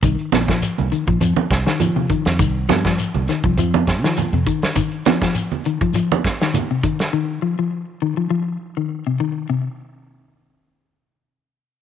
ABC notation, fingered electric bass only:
X:1
M:4/4
L:1/16
Q:"Swing 16ths" 1/4=101
K:Fdor
V:1 name="Fingered electric bass" clef=bass
C,, z B,,,2 z C,, z B,,, F,, z C,, z F,3 F,, | C,,2 G,,2 z C,, z C,, F,,3 F,2 F,, z2 | z16 | z16 |
z16 |]